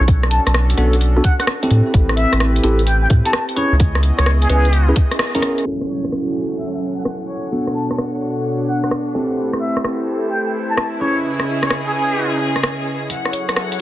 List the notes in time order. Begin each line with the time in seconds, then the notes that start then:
0.00 B1
0.08 C#4 D4 F#4 A4, kick, closed hi-hat
0.23 cross-stick
0.31 A5, closed hi-hat
0.47 B1 A5, cross-stick, closed hi-hat
0.54 cross-stick
0.70 closed hi-hat
0.78 B1 B3 D4 F#4 A4, closed hi-hat
0.93 closed hi-hat
1.01 closed hi-hat
1.17 B3 D4 F#4 A4
1.24 F#5, kick, closed hi-hat
1.40 F#5, cross-stick, closed hi-hat
1.47 cross-stick
1.63 C4 E4 G4 A4, closed hi-hat
1.71 A2 C4 E4 G4 B4, closed hi-hat
1.94 A1, kick, closed hi-hat
2.09 cross-stick
2.17 E5, closed hi-hat
2.33 A1, cross-stick, closed hi-hat
2.40 cross-stick
2.56 closed hi-hat
2.64 A1 C4 E4 G4 A4, closed hi-hat
2.79 closed hi-hat
2.87 G5, closed hi-hat
3.03 G5
3.10 A2, kick, closed hi-hat
3.26 C4 E4 G4 A4 A5, closed hi-hat
3.33 A5, cross-stick
3.49 closed hi-hat
3.56 B3 C#4 E4 G#4 B4 C#5 D#5, closed hi-hat
3.72 C#2
3.80 kick, closed hi-hat
3.95 cross-stick
4.03 closed hi-hat
4.19 C#2 C#5, cross-stick, closed hi-hat
4.26 cross-stick
4.42 G#4, closed hi-hat
4.50 C#2 C#4 E4 G#4 B4, closed hi-hat
4.65 closed hi-hat
4.73 closed hi-hat
4.88 C#4 E4 G#4 B4
4.96 kick, closed hi-hat
5.11 cross-stick, closed hi-hat
5.19 cross-stick
5.35 C#4 E4 G#4 A#4, closed hi-hat
5.42 cross-stick, closed hi-hat
5.58 closed hi-hat
5.66 F#3 C#4 E4 F#4 A4 F#5 G#5, crash, downlifter
5.81 cross-stick
5.89 C#5
6.05 cross-stick
6.12 cross-stick
6.59 E5
6.74 E5
6.98 F#5
7.05 F#5, cross-stick
7.29 C#5
7.52 B2 B3 D4 F#4 A4 C#5
7.67 cross-stick
7.75 A5
7.91 A5, cross-stick
7.98 cross-stick
8.26 D4
8.68 F#5
8.84 F#5, cross-stick
8.91 cross-stick
9.15 A3 C4 E4 G4 A4 B4 C5
9.53 cross-stick
9.61 E5
9.70 E4
9.77 cross-stick
9.84 cross-stick
10.31 G5
10.47 G5
10.70 A5
10.77 A5, cross-stick
11.01 C#3 C#4 E4 G#4 B4 C#5 D#5
11.22 G#4
11.40 cross-stick
11.63 C#5, cross-stick
11.70 cross-stick
11.86 G#4
11.94 G#4
12.56 cross-stick
12.63 cross-stick
13.10 F#3 E4 G#4 A4 C#5 F#5, closed hi-hat, riser
13.25 cross-stick
13.33 C#5, closed hi-hat
13.49 cross-stick, closed hi-hat
13.55 C#5, cross-stick
13.72 closed hi-hat